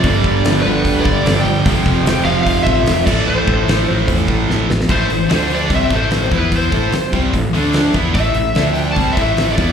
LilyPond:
<<
  \new Staff \with { instrumentName = "Lead electric guitar" } { \time 4/4 \key a \minor \tempo 4 = 148 d''4. b'4 d''4 g''8~ | g''4. f''8 f''8 e''4 d''8 | c''2 r2 | c''4. d''8 e''8 c''4 b'8 |
c''4. r2 r8 | e''4. g''8 a''8 e''4 d''8 | }
  \new Staff \with { instrumentName = "Distorted electric guitar" } { \clef bass \time 4/4 \key a \minor <g, d g>4. <g, d g>2~ <g, d g>8 | <f, c f>4. <f, c f>2 <a, e a>8~ | <a, e a>4 <a, e a>2~ <a, e a>8 r8 | <a, e a>8 <a, e>8 <d a d'>4 <c g c'>8 <a, e a>4 <e b e'>8~ |
<e b e'>8 <a e' a'>8 r8 <c g c'>8 <a, e>8 <d a d'>4 <e b e'>8 | <a, e a>8 <a, e>8 <d a d'>4 <c g c'>8 <a, e a>4 <e b e'>8 | }
  \new Staff \with { instrumentName = "Distorted electric guitar" } { \clef bass \time 4/4 \key a \minor <g, d g>1 | <f, c f>2.~ <f, c f>8 <a, e a>8~ | <a, e a>2.~ <a, e a>8 r8 | <a, e a>8 <a, e>8 <d a d'>4 <c g c'>8 <a, e a>4 <e b e'>8~ |
<e b e'>8 <a e' a'>8 r8 <c g c'>8 <a, e>8 <d a d'>4 <e b e'>8 | <a, e a>8 <a, e>8 <d a d'>4 <c g c'>8 <a, e a>4 <e b e'>8 | }
  \new Staff \with { instrumentName = "Distorted electric guitar" } { \clef bass \time 4/4 \key a \minor <g, d g>4. <g, d g>4. <g, d g>4 | <f, c f>4. <f, c f>4. <f, c f>8 <a, e a>8~ | <a, e a>4 <a, e a>4. <a, e a>4 r8 | <a, e a>8 <a, e>8 <d a d'>4 <c g c'>8 <a, e a>4 <e b e'>8~ |
<e b e'>8 <a e' a'>8 r8 <c g c'>8 <a, e>8 <d a d'>4 <e b e'>8 | <a, e a>8 <a, e>8 <d a d'>4 <c g c'>8 <a, e a>4 <e b e'>8 | }
  \new Staff \with { instrumentName = "Fingered electric bass" } { \clef bass \time 4/4 \key a \minor g,,8 g,,8 g,,8 g,,8 d,8 g,,8 g,,8 g,,8 | f,,8 f,,8 f,,8 f,,8 f,,8 a,,8 f,,8 a,,8 | a,,8 a,,8 a,,8 a,,8 e,8 a,,8 a,,8 a,,8 | a,,8 a,,8 d,4 c,8 a,,4 e,8~ |
e,8 a,8 r8 c,8 a,,8 d,4 e,8 | a,,8 a,,8 d,4 c,8 a,,4 e,8 | }
  \new DrumStaff \with { instrumentName = "Drums" } \drummode { \time 4/4 <hho bd>8 bd8 <hho sn>4 <hho bd>8 bd8 <hho sn>4 | <hho bd>8 bd8 <hho sn>4 <hho bd>8 bd8 <hho sn>8 <cymc bd>8 | r8 bd8 <hho sn>4 <hho bd>8 bd8 sn8 sn16 sn16 | <cymc bd>8 hho8 <hho sn>8 hho8 <hho bd>8 <hho bd>8 <hho sn>8 <hho bd sn>8 |
<hho bd>8 <hho bd>8 <hho sn>8 <hho bd>8 <hho bd>8 hho8 <hho sn>8 <hho bd>8 | <hho bd>8 hho8 <hho sn>8 hho8 <hho bd>8 <hho bd>8 <hho sn>8 <hho bd>8 | }
>>